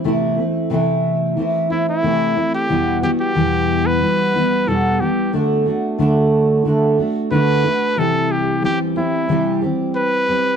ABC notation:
X:1
M:4/4
L:1/16
Q:"Swing 16ths" 1/4=91
K:Clyd
V:1 name="Trumpet"
z8 z2 E E4 G- | G2 G G4 B4- B A2 G2 | z12 B4 | A2 G2 G2 E4 z2 B4 |]
V:2 name="Steel-string acoustic guitar"
[C,E,A,CE]2 [A,CE]2 [C,E,A,CE]4 [E,A,CE]2 [A,CE]2 [C,E,A,CE]2 [A,CE]2 | [E,,B,,E,G,B,]2 [E,G,B,F]2 [E,,B,,E,G,B,]4 [E,G,B,F]2 [E,G,B,F]2 [E,,B,,E,G,B,F]2 [E,G,B,]2 | [D,A,DF]2 [A,DF]2 [D,A,DF]4 [D,A,DF]2 [A,DF]2 [D,A,DF]2 [A,DF]2 | [C,E,G,CG]4 [E,G,CG]2 [G,CG]2 [C,E,G,CG]2 [G,CG]4 [G,CG]2 |]